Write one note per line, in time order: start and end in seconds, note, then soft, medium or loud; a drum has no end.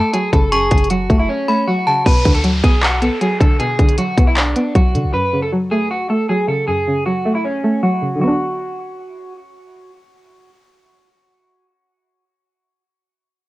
0.00 0.14 C#3 medium
0.00 0.12 F#3 loud
0.00 0.91 A3 medium
0.00 0.10 A4 medium
0.00 0.49 A5 medium
0.14 0.89 F#3 medium
0.14 0.30 G#4 medium
0.14 closed hi-hat medium
0.33 0.70 F#1 loud
0.33 0.71 C#3 medium
0.33 0.49 A4 medium
0.33 kick loud
0.33 closed hi-hat medium
0.52 1.48 F#2 medium
0.52 0.88 G#4 loud
0.52 0.88 C#6 loud
0.52 closed hi-hat medium
0.71 1.08 F#1 loud
0.71 1.68 C#3 medium
0.71 kick loud
0.71 closed hi-hat medium
0.71 open hi-hat medium
0.78 closed hi-hat medium
0.84 closed hi-hat soft
0.90 1.66 F#3 medium
0.90 1.18 F#4 medium
0.90 closed hi-hat medium
1.10 1.28 F#1 loud
1.10 1.47 A3 medium
1.10 kick loud
1.10 closed hi-hat medium
1.19 1.27 E4 medium
1.29 1.65 C#4 medium
1.48 2.06 A3 medium
1.48 1.84 B5 medium
1.67 2.06 F#3 medium
1.67 2.04 F#4 medium
1.87 2.06 C#3 medium
1.87 2.05 A5 medium
2.06 2.24 B1 loud
2.06 3.02 B2 medium
2.06 2.33 B4 loud
2.06 kick loud
2.06 closed hi-hat medium
2.06 downlifter medium
2.25 2.62 D2 loud
2.25 3.21 D3 medium
2.25 kick medium
2.25 closed hi-hat medium
2.35 2.43 A4 medium
2.35 closed hi-hat medium
2.44 3.20 F#3 loud
2.44 closed hi-hat medium
2.64 3.10 B1 loud
2.64 3.01 B3 medium
2.64 2.80 G#4 medium
2.64 kick loud
2.64 closed hi-hat medium
2.83 2.99 F#4 medium
2.83 clap loud
2.83 closed hi-hat medium
3.02 3.98 B3 medium
3.02 3.18 A4 medium
3.02 closed hi-hat medium
3.21 3.97 F#3 medium
3.21 3.37 G#4 medium
3.21 closed hi-hat medium
3.40 3.59 B1 loud
3.40 3.78 D3 medium
3.40 3.56 A4 medium
3.40 kick loud
3.40 closed hi-hat medium
3.60 4.56 B2 loud
3.60 3.96 G#4 loud
3.60 closed hi-hat medium
3.79 3.98 B1 loud
3.79 4.75 D3 medium
3.79 kick loud
3.79 closed hi-hat medium
3.89 closed hi-hat medium
3.98 4.74 F#3 medium
3.98 4.25 F#4 medium
3.98 closed hi-hat medium
4.17 4.54 B1 loud
4.17 4.55 B3 medium
4.17 kick loud
4.17 closed hi-hat medium
4.27 4.35 E4 medium
4.37 4.73 D4 medium
4.37 clap loud
4.37 closed hi-hat medium
4.56 5.14 B3 medium
4.56 closed hi-hat medium
4.75 4.96 B1 loud
4.75 5.13 F#3 medium
4.75 5.11 F#4 medium
4.75 kick loud
4.75 closed hi-hat medium
4.94 5.06 D3 loud
4.94 5.14 D3 medium
4.94 closed hi-hat medium
5.04 5.13 B1 loud
5.14 6.10 F#2 loud
5.14 5.41 B4 loud
5.33 6.29 C#3 medium
5.42 5.50 A4 medium
5.53 6.28 F#3 medium
5.71 6.09 A3 medium
5.71 5.87 G#4 medium
5.91 6.07 F#4 medium
6.10 7.06 A3 medium
6.10 6.26 A4 medium
6.29 7.05 F#3 medium
6.29 6.45 G#4 medium
6.48 6.86 C#3 medium
6.48 6.64 A4 medium
6.67 7.64 F#2 medium
6.67 7.04 G#4 loud
6.87 7.83 C#3 medium
7.06 7.82 F#3 medium
7.06 7.33 F#4 medium
7.25 7.63 A3 medium
7.35 7.43 E4 medium
7.44 7.81 C#4 medium
7.64 8.21 A3 medium
7.83 8.18 F#3 medium
7.83 8.19 F#4 medium
8.02 8.21 C#3 medium
8.15 11.98 D3 medium
8.19 12.02 F#3 medium
8.19 9.33 F#4 medium
8.23 12.06 B3 medium
8.27 12.10 D4 medium